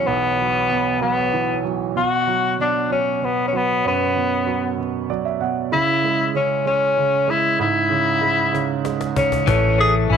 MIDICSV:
0, 0, Header, 1, 6, 480
1, 0, Start_track
1, 0, Tempo, 626959
1, 54, Time_signature, 6, 3, 24, 8
1, 7786, End_track
2, 0, Start_track
2, 0, Title_t, "Tenor saxophone"
2, 0, Program_c, 0, 66
2, 51, Note_on_c, 0, 59, 64
2, 773, Note_off_c, 0, 59, 0
2, 778, Note_on_c, 0, 59, 57
2, 1229, Note_off_c, 0, 59, 0
2, 1508, Note_on_c, 0, 66, 68
2, 1958, Note_off_c, 0, 66, 0
2, 1999, Note_on_c, 0, 62, 58
2, 2217, Note_off_c, 0, 62, 0
2, 2240, Note_on_c, 0, 61, 65
2, 2483, Note_on_c, 0, 59, 55
2, 2495, Note_off_c, 0, 61, 0
2, 2656, Note_off_c, 0, 59, 0
2, 2661, Note_on_c, 0, 61, 52
2, 2729, Note_on_c, 0, 59, 65
2, 2741, Note_off_c, 0, 61, 0
2, 2957, Note_off_c, 0, 59, 0
2, 2968, Note_on_c, 0, 59, 60
2, 3643, Note_off_c, 0, 59, 0
2, 4386, Note_on_c, 0, 64, 82
2, 4829, Note_off_c, 0, 64, 0
2, 4869, Note_on_c, 0, 61, 60
2, 5085, Note_off_c, 0, 61, 0
2, 5108, Note_on_c, 0, 61, 72
2, 5588, Note_on_c, 0, 64, 72
2, 5599, Note_off_c, 0, 61, 0
2, 5818, Note_off_c, 0, 64, 0
2, 5823, Note_on_c, 0, 64, 72
2, 6746, Note_off_c, 0, 64, 0
2, 7024, Note_on_c, 0, 61, 64
2, 7241, Note_off_c, 0, 61, 0
2, 7265, Note_on_c, 0, 61, 78
2, 7482, Note_off_c, 0, 61, 0
2, 7507, Note_on_c, 0, 68, 86
2, 7611, Note_off_c, 0, 68, 0
2, 7753, Note_on_c, 0, 64, 80
2, 7786, Note_off_c, 0, 64, 0
2, 7786, End_track
3, 0, Start_track
3, 0, Title_t, "Clean electric guitar"
3, 0, Program_c, 1, 27
3, 7252, Note_on_c, 1, 52, 72
3, 7492, Note_on_c, 1, 57, 56
3, 7731, Note_on_c, 1, 61, 47
3, 7786, Note_off_c, 1, 52, 0
3, 7786, Note_off_c, 1, 57, 0
3, 7786, Note_off_c, 1, 61, 0
3, 7786, End_track
4, 0, Start_track
4, 0, Title_t, "Grand piano"
4, 0, Program_c, 2, 0
4, 0, Control_c, 2, 64, 127
4, 0, Note_on_c, 2, 40, 49
4, 0, Note_on_c, 2, 47, 38
4, 0, Note_on_c, 2, 52, 44
4, 0, Note_on_c, 2, 54, 42
4, 55, Note_on_c, 2, 35, 57
4, 284, Note_off_c, 2, 54, 0
4, 296, Note_on_c, 2, 54, 40
4, 504, Note_off_c, 2, 52, 0
4, 535, Note_off_c, 2, 47, 0
4, 535, Note_on_c, 2, 47, 34
4, 762, Note_off_c, 2, 54, 0
4, 773, Note_on_c, 2, 54, 39
4, 1018, Note_on_c, 2, 52, 44
4, 1249, Note_off_c, 2, 54, 0
4, 1261, Note_on_c, 2, 54, 40
4, 1470, Note_off_c, 2, 35, 0
4, 1472, Note_off_c, 2, 47, 0
4, 1487, Note_off_c, 2, 52, 0
4, 1495, Note_off_c, 2, 54, 0
4, 1498, Note_on_c, 2, 47, 54
4, 1510, Control_c, 2, 64, 0
4, 1511, Note_off_c, 2, 40, 0
4, 1662, Control_c, 2, 64, 127
4, 1741, Note_on_c, 2, 54, 39
4, 1965, Note_off_c, 2, 47, 0
4, 1977, Note_on_c, 2, 47, 37
4, 2210, Note_off_c, 2, 54, 0
4, 2221, Note_on_c, 2, 54, 38
4, 2452, Note_off_c, 2, 47, 0
4, 2464, Note_on_c, 2, 47, 42
4, 2689, Note_off_c, 2, 54, 0
4, 2700, Note_on_c, 2, 54, 39
4, 2945, Note_on_c, 2, 42, 56
4, 3174, Note_off_c, 2, 47, 0
4, 3186, Note_on_c, 2, 47, 40
4, 3409, Note_off_c, 2, 54, 0
4, 3420, Note_on_c, 2, 54, 41
4, 3649, Note_off_c, 2, 47, 0
4, 3660, Note_on_c, 2, 47, 38
4, 3890, Note_off_c, 2, 54, 0
4, 3902, Note_on_c, 2, 54, 46
4, 3903, Note_on_c, 2, 74, 51
4, 4013, Note_off_c, 2, 74, 0
4, 4021, Note_on_c, 2, 76, 47
4, 4128, Note_off_c, 2, 47, 0
4, 4132, Note_off_c, 2, 76, 0
4, 4139, Note_on_c, 2, 47, 45
4, 4139, Note_on_c, 2, 78, 50
4, 4347, Note_off_c, 2, 42, 0
4, 4361, Note_off_c, 2, 78, 0
4, 4364, Note_off_c, 2, 54, 0
4, 4371, Note_off_c, 2, 47, 0
4, 4379, Note_on_c, 2, 49, 58
4, 4386, Control_c, 2, 64, 0
4, 4519, Control_c, 2, 64, 127
4, 4623, Note_on_c, 2, 56, 43
4, 4846, Note_off_c, 2, 49, 0
4, 4858, Note_on_c, 2, 49, 38
4, 5085, Note_off_c, 2, 56, 0
4, 5096, Note_on_c, 2, 56, 38
4, 5328, Note_off_c, 2, 49, 0
4, 5339, Note_on_c, 2, 49, 41
4, 5559, Note_off_c, 2, 56, 0
4, 5571, Note_on_c, 2, 56, 43
4, 5814, Note_on_c, 2, 44, 57
4, 6036, Note_off_c, 2, 49, 0
4, 6048, Note_on_c, 2, 49, 44
4, 6278, Note_off_c, 2, 56, 0
4, 6289, Note_on_c, 2, 56, 38
4, 6517, Note_off_c, 2, 49, 0
4, 6528, Note_on_c, 2, 49, 41
4, 6762, Note_off_c, 2, 56, 0
4, 6773, Note_on_c, 2, 56, 42
4, 7002, Note_off_c, 2, 49, 0
4, 7014, Note_on_c, 2, 49, 39
4, 7223, Note_off_c, 2, 44, 0
4, 7239, Note_off_c, 2, 56, 0
4, 7246, Note_off_c, 2, 49, 0
4, 7256, Note_on_c, 2, 57, 68
4, 7262, Control_c, 2, 64, 0
4, 7406, Control_c, 2, 64, 127
4, 7482, Note_off_c, 2, 57, 0
4, 7493, Note_on_c, 2, 57, 51
4, 7726, Note_off_c, 2, 57, 0
4, 7738, Note_on_c, 2, 57, 44
4, 7786, Note_off_c, 2, 57, 0
4, 7786, End_track
5, 0, Start_track
5, 0, Title_t, "Fingered electric bass"
5, 0, Program_c, 3, 33
5, 7254, Note_on_c, 3, 33, 88
5, 7704, Note_off_c, 3, 33, 0
5, 7735, Note_on_c, 3, 33, 84
5, 7786, Note_off_c, 3, 33, 0
5, 7786, End_track
6, 0, Start_track
6, 0, Title_t, "Cajon"
6, 6542, Note_on_c, 9, 38, 38
6, 6619, Note_off_c, 9, 38, 0
6, 6775, Note_on_c, 9, 38, 57
6, 6851, Note_off_c, 9, 38, 0
6, 6896, Note_on_c, 9, 38, 52
6, 6973, Note_off_c, 9, 38, 0
6, 7016, Note_on_c, 9, 36, 76
6, 7093, Note_off_c, 9, 36, 0
6, 7136, Note_on_c, 9, 36, 67
6, 7213, Note_off_c, 9, 36, 0
6, 7254, Note_on_c, 9, 36, 95
6, 7331, Note_off_c, 9, 36, 0
6, 7500, Note_on_c, 9, 38, 19
6, 7577, Note_off_c, 9, 38, 0
6, 7737, Note_on_c, 9, 38, 20
6, 7786, Note_off_c, 9, 38, 0
6, 7786, End_track
0, 0, End_of_file